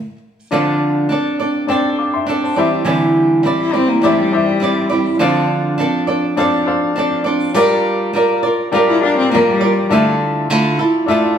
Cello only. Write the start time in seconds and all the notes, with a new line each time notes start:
3.60 E4
3.74 C4
3.88 A#3
4.03 A3
4.18 G3
8.88 E4
9.03 D4
9.17 C4
9.32 A#3
9.47 G3